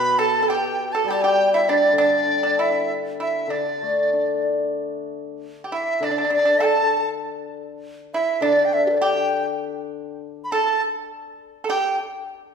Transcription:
Already playing: B2 B4 B5
0.19 A4 A5
0.42 A4
0.48 G4 G5
0.93 A4 A5
1.04 G3 G5
1.10 G4 A5
1.22 G4 G5
1.54 E4 E5
1.69 D4 D5
1.93 D3
1.98 D4 D5
2.43 D4
2.59 E4 E5
3.20 E4 E5
3.47 D3 D4 D5
3.82 A3
4.13 D4
5.64 G4
5.72 E4 E5
6.00 D3 D4
6.05 D5
6.11 D4
6.18 D4
6.25 D4
6.30 D4 D5
6.39 D4
6.45 D4
6.60 A4
6.65 A5
8.14 E4 E5
8.35 E5
8.41 D3 D4 D5
8.65 G5
8.73 E5
8.80 B3
8.87 G4 A4
8.93 B4 D5
9.00 G4 E5 G5
10.44 B5
10.52 A4 A5
11.64 A4
11.69 G4 G5

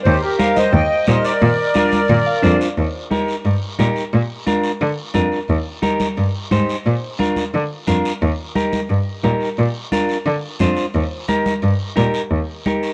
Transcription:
0.04 D#2 G4 C5, low conga, long guiro
0.21 G4 A#4
0.38 D#4 G4 A#4 F5, high conga, short guiro
0.56 C5 D#5, high conga, short guiro
0.72 D#2 D#5 G5, low conga, long guiro
1.07 A#2 D#4 G4 A#4 C5 D#5, high conga, short guiro
1.24 A#4 D5, short guiro
1.40 A#2, low conga, long guiro
1.74 D4 F4 A#4, high conga, short guiro
1.92 high conga, short guiro
2.08 A#2, low conga, long guiro
2.26 F5
2.42 F2 D4 F4 C5 D5, high conga, short guiro
2.61 short guiro
2.77 D#2, long guiro
3.10 D#4 G4 A#4, high conga, short guiro
3.28 short guiro
3.45 G2, long guiro
3.79 A#2 D#4 G4 A#4, high conga, short guiro
3.96 short guiro
4.13 A#2, long guiro
4.47 D4 F4 A#4, high conga, short guiro
4.64 short guiro
4.81 D3, long guiro
5.14 F2 D4 F4 A#4, high conga, short guiro
5.32 short guiro
5.48 D#2, long guiro
5.83 D#4 G4 A#4, high conga, short guiro
6.00 high conga, short guiro
6.18 G2, long guiro
6.51 G#2 D#4 G4 C5, high conga, short guiro
6.69 short guiro
6.86 A#2, long guiro
7.19 D4 F4 A#4, high conga, short guiro
7.36 high conga, short guiro
7.53 D3, long guiro
7.87 F2 D4 F4 A#4, high conga, short guiro
8.05 short guiro
8.22 D#2, long guiro
8.56 D#4 G4 A#4, high conga, short guiro
8.73 high conga, short guiro
8.90 G2, long guiro
9.24 A#2 D#4 G4 A#4, high conga, short guiro
9.41 short guiro
9.57 A#2, long guiro
9.92 D4 F4 A#4, high conga, short guiro
10.09 short guiro
10.26 D3, long guiro
10.59 F2 D4 F4 C5, high conga, short guiro
10.77 short guiro
10.94 D#2, long guiro
11.28 D#4 G4 A#4, high conga, short guiro
11.46 high conga, short guiro
11.62 G2, long guiro
11.96 A#2 D#4 G4 A#4, high conga, short guiro
12.14 short guiro
12.31 D#2, long guiro
12.66 D#4 G4 A#4, high conga, short guiro
12.83 short guiro

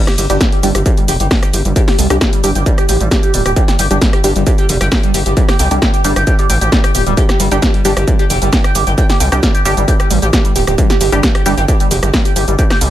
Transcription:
0.07 G4, cross-stick, snare, closed hi-hat, shaker
0.18 G1 G4, open hi-hat, shaker
0.30 G1 G3 D4 G4, closed hi-hat, shaker
0.41 G4, kick, snare, closed hi-hat, shaker
0.52 G4, closed hi-hat
0.63 G1 G3 D4 G4, open hi-hat, shaker
0.75 G1 G4, cross-stick, closed hi-hat, shaker
0.86 G4, kick, closed hi-hat, shaker
0.97 G3, closed hi-hat, shaker
1.08 F1 G4, open hi-hat, shaker
1.20 G1 G4, closed hi-hat, shaker
1.31 kick, snare, open hi-hat, shaker
1.43 G4, cross-stick, closed hi-hat, shaker
1.53 G1 G4, open hi-hat, shaker
1.65 G1 G3, closed hi-hat, shaker
1.76 G4, kick, closed hi-hat, shaker
1.88 G4, snare, open hi-hat, shaker
1.98 C2 G3, open hi-hat, shaker
2.10 C2 G3 D4 G4, cross-stick, closed hi-hat, shaker
2.21 G4, kick, snare, closed hi-hat, shaker
2.33 G3, closed hi-hat, shaker
2.44 G1 G3 D4 G4, open hi-hat, shaker
2.55 G1 G4, closed hi-hat, shaker
2.66 G3, kick, closed hi-hat, shaker
2.78 G4, cross-stick, closed hi-hat, shaker
2.89 A1 G4, open hi-hat, shaker
3.00 A1 G3, closed hi-hat, shaker
3.11 G4, kick, snare, closed hi-hat, shaker
3.23 G4, closed hi-hat, shaker
3.34 D1 G3, open hi-hat, shaker
3.46 D1 G4, cross-stick, closed hi-hat, shaker
3.56 G4, kick, closed hi-hat, shaker
3.68 G3, snare, closed hi-hat, shaker
3.79 G1 G4, open hi-hat, shaker
3.91 G1 G3 D4 G4, closed hi-hat, shaker
4.01 G3, kick, snare, closed hi-hat, shaker
4.13 G4, cross-stick, closed hi-hat
4.24 G1 G3 D4 G4, open hi-hat, shaker
4.36 G1 G3, closed hi-hat, shaker
4.47 G4, kick, closed hi-hat, shaker
4.58 G4, closed hi-hat, shaker
4.69 F1 G3, open hi-hat, shaker
4.81 G1 G4, cross-stick, closed hi-hat, shaker
4.92 G4, kick, snare, open hi-hat, shaker
5.03 G3, closed hi-hat, shaker
5.14 G1 G4, open hi-hat, shaker
5.26 G1 G4, closed hi-hat, shaker
5.37 G3, kick, closed hi-hat, shaker
5.49 G4, cross-stick, snare, open hi-hat, shaker
5.59 C2 G4, open hi-hat, shaker
5.71 C2 G3 D4 G4, closed hi-hat, shaker
5.82 G4, kick, snare, closed hi-hat, shaker
5.94 G4, closed hi-hat, shaker
6.04 G1 G3 D4 G4, open hi-hat, shaker
6.16 G1 G4, cross-stick, closed hi-hat, shaker
6.27 G4, kick, closed hi-hat, shaker
6.39 G3, closed hi-hat, shaker
6.50 A1 G4, open hi-hat, shaker
6.61 A1 G4, closed hi-hat, shaker
6.72 G3, kick, snare, closed hi-hat, shaker
6.84 G4, cross-stick, closed hi-hat, shaker
6.95 D1 G4, open hi-hat, shaker
7.06 D1 G3, closed hi-hat, shaker
7.17 G4, kick, closed hi-hat, shaker
7.29 G4, cross-stick, snare, closed hi-hat, shaker
7.40 G1 G3, open hi-hat, shaker
7.51 G1 G3 D4 G4, closed hi-hat, shaker
7.62 G4, kick, snare, closed hi-hat, shaker
7.74 G3, closed hi-hat
7.85 G1 G3 D4 G4, open hi-hat, shaker
7.97 G1 G4, cross-stick, closed hi-hat, shaker
8.07 G3, kick, closed hi-hat, shaker
8.19 G4, closed hi-hat, shaker
8.30 F1 G4, open hi-hat, shaker
8.42 G1 G3, closed hi-hat, shaker
8.53 G4, kick, snare, open hi-hat, shaker
8.64 G4, cross-stick, closed hi-hat, shaker
8.75 G1 G3, open hi-hat, shaker
8.87 G1 G4, closed hi-hat, shaker
8.98 G4, kick, closed hi-hat, shaker
9.09 G3, snare, open hi-hat, shaker
9.20 C2 G4, open hi-hat, shaker
9.32 C2 G3 D4 G4, cross-stick, closed hi-hat, shaker
9.43 G3, kick, snare, closed hi-hat, shaker
9.55 G4, closed hi-hat, shaker
9.65 G1 G3 D4 G4, open hi-hat, shaker
9.77 G1 G3, closed hi-hat, shaker
9.88 G4, kick, closed hi-hat, shaker
10.00 G4, cross-stick, closed hi-hat, shaker
10.10 A1 G3, open hi-hat, shaker
10.22 A1 G4, closed hi-hat, shaker
10.33 G4, kick, snare, closed hi-hat, shaker
10.45 G3, closed hi-hat, shaker
10.56 D1 G4, open hi-hat, shaker
10.67 D1 G4, cross-stick, closed hi-hat, shaker
10.78 G3, kick, closed hi-hat, shaker
10.90 G4, snare, closed hi-hat, shaker
11.01 G1 G4, open hi-hat, shaker
11.12 G1 G3 D4 G4, closed hi-hat, shaker
11.23 G4, kick, snare, closed hi-hat, shaker
11.35 G4, cross-stick, closed hi-hat
11.46 G1 G3 D4 G4, open hi-hat, shaker
11.57 G1 G4, closed hi-hat, shaker
11.68 G4, kick, closed hi-hat, shaker
11.80 G3, closed hi-hat, shaker
11.91 F1 G4, open hi-hat, shaker
12.03 G1 G4, cross-stick, closed hi-hat, shaker
12.13 G3, kick, snare, open hi-hat, shaker
12.25 G4, closed hi-hat, shaker
12.36 G1 G4, open hi-hat, shaker
12.48 G1 G3, closed hi-hat, shaker
12.59 G4, kick, closed hi-hat, shaker
12.70 G4, cross-stick, snare, open hi-hat, shaker
12.81 C2 G3, open hi-hat, shaker

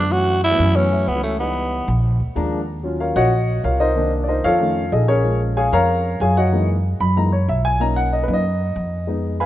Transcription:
Already playing: F#2 D4
0.10 E3 F#3 A3 C#4 F#4
0.44 E4
0.50 E3 F#3 A3 B3
0.58 F#2 E3 F#3 A3 C#4
0.74 E3 F#3 A3 B3 C#4
0.91 E3 F#3 A3 E4
1.07 C#2 B3
1.15 E3 F#3 A3 C#4
1.23 A3
1.39 E3 G3 B3 D#4
1.88 A#1
2.20 D2
2.35 D#2 F3 G#3 A#3 D4 A#5
2.83 F#3 C#4 F4
3.00 F4 A#4 C#5 F5
3.16 A#1 F#4 C#5 D#5 F#5
3.64 C2 F4 A#4 C#5 F5
3.80 D#4 A#4 C5 D#5
3.95 D#3 A#3 D4
4.24 D5
4.28 D#4 A#4 C5 D#5
4.44 F2 F4 A4 C#5 F5
4.60 D#3 A3 C#4
4.92 A#1 D#4 G#4 A4 D#5
5.08 C#4 G#4 A#4 C#5
5.24 F3 G#3 C#4
5.57 G#4 C#5 F5 G#5
5.72 F2 A#4 C#5 F5 A#5
6.20 F#2 G#4 C#5 F5 G#5
6.37 F#4 C#5 D#5 F#5
6.52 E3 G#3 A#3 D#4
7.00 F#2 B5
7.16 E3 G#3 A#3 D#4 A#5
7.33 C#5
7.48 B1 E5
7.65 G#5
7.80 A#3 C#4 D#4 A#5
7.96 F#5
8.13 D#5
8.23 B4
8.28 F#2 A#3 C#4 D#4
8.33 D#5
8.76 F2
9.07 G#3 B3 D#4
9.40 B4 F5 G#5 B5

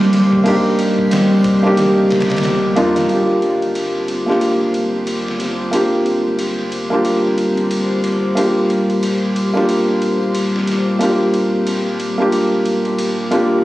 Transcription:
Already playing: G1 G3 A#3 C4 D4 D#4 G4 C5
0.01 snare
0.13 snare, ride
0.32 kick
0.44 C2 A#3 D4 D#4 G4, kick, ride
0.79 ride
0.98 kick
1.11 snare, ride
1.44 C2, kick, ride
1.63 A#3 D4 D#4 G4
1.77 snare, ride
2.10 G1, snare, ride
2.20 snare, ride
2.30 C2, snare, ride
2.37 snare, ride
2.43 snare, ride
2.76 F2 A#3 D4 D#4 F4, ride
2.96 snare, ride
3.08 G1 G3 A#3 C4 D4 F4 G4 C5, ride
3.42 ride
3.62 ride
3.75 ride
4.08 ride
4.26 A#3 D4 F4 G4, snare
4.41 ride
4.74 ride
5.07 ride
5.28 snare
5.40 snare, ride
5.71 A#3 D4 F4 G4, ride
6.06 ride
6.39 ride
6.72 ride
6.90 A#3 D4 F4 G4
7.05 ride
7.38 ride
7.57 ride
7.71 ride
8.04 ride
8.35 D#1 A#3 D4 F4 G4, ride
8.70 ride
8.90 ride
9.03 ride
9.36 ride
9.53 A#3 D4 F4 G4, snare
9.69 ride
10.02 ride
10.35 ride
10.56 snare
10.67 snare, ride
10.99 A#3 D4 F4 G4, ride
11.34 ride
11.67 ride
12.00 ride
12.18 A#3 D4 F4 G4
12.32 ride
12.66 ride
12.85 ride
12.99 ride
13.31 A#3 D4 F4 G4, ride

